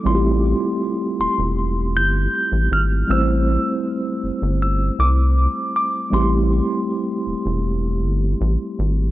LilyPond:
<<
  \new Staff \with { instrumentName = "Synth bell" } { \time 4/4 \key a \minor \tempo 4 = 79 c'''4. c'''4 g'''4 f'''8 | e'''2 e'''8 d'''4 d'''8 | c'''2.~ c'''8 r8 | }
  \new Staff \with { instrumentName = "Tine electric piano" } { \time 4/4 \key a \minor <g a c' e' f' g'>1 | <g a c' e' c''>1 | <g a c' e' g'>1 | }
  \new Staff \with { instrumentName = "Analog synth bass" } { \clef bass \time 4/4 \key a \minor a,,8. r8. e,,16 e,,8. g,,8 r16 a,,16 gis,,8 | a,,8. r8. g,,16 g,,8. c,8. r8. | a,,8. r8. e,,16 e,,8. g,,8 a,,16 r16 gis,,8 | }
>>